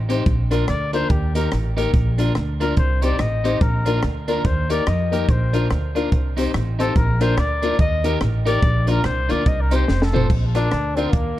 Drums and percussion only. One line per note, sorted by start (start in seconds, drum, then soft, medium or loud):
0.10 closed hi-hat loud
0.26 kick loud
0.26 closed hi-hat medium
0.51 cross-stick medium
0.51 closed hi-hat loud
0.68 cross-stick medium
0.68 closed hi-hat medium
0.93 closed hi-hat medium
1.10 kick loud
1.10 closed hi-hat medium
1.35 closed hi-hat loud
1.51 cross-stick loud
1.51 closed hi-hat medium
1.78 closed hi-hat loud
1.94 kick loud
1.94 closed hi-hat medium
2.18 closed hi-hat loud
2.35 cross-stick loud
2.35 closed hi-hat medium
2.61 closed hi-hat medium
2.77 kick loud
2.77 closed hi-hat medium
3.02 closed hi-hat loud
3.19 cross-stick loud
3.19 closed hi-hat medium
3.45 closed hi-hat loud
3.61 kick loud
3.61 closed hi-hat medium
3.86 closed hi-hat loud
4.02 cross-stick loud
4.02 closed hi-hat medium
4.28 closed hi-hat medium
4.45 kick loud
4.45 closed hi-hat medium
4.70 closed hi-hat loud
4.86 cross-stick loud
4.86 closed hi-hat medium
5.13 closed hi-hat loud
5.29 kick loud
5.29 closed hi-hat medium
5.54 closed hi-hat loud
5.70 cross-stick loud
5.70 closed hi-hat medium
5.96 closed hi-hat medium
6.12 kick loud
6.12 closed hi-hat medium
6.37 closed hi-hat loud
6.54 cross-stick loud
6.54 closed hi-hat medium
6.80 closed hi-hat medium
6.96 kick loud
6.96 closed hi-hat medium
7.21 cross-stick medium
7.21 closed hi-hat loud
7.37 cross-stick loud
7.37 closed hi-hat medium
7.63 closed hi-hat medium
7.79 kick loud
7.79 closed hi-hat medium
8.04 closed hi-hat loud
8.21 cross-stick loud
8.21 closed hi-hat medium
8.47 closed hi-hat loud
8.62 kick loud
8.62 closed hi-hat medium
8.87 closed hi-hat loud
9.04 cross-stick loud
9.04 closed hi-hat medium
9.30 closed hi-hat medium
9.46 kick loud
9.46 closed hi-hat medium
9.71 closed hi-hat loud
9.88 snare medium
10.02 snare medium
10.16 floor tom loud
10.30 kick loud
10.30 crash loud
10.55 cross-stick medium
10.55 closed hi-hat loud
10.71 cross-stick loud
10.71 closed hi-hat medium
10.97 closed hi-hat medium
11.13 kick loud
11.13 closed hi-hat medium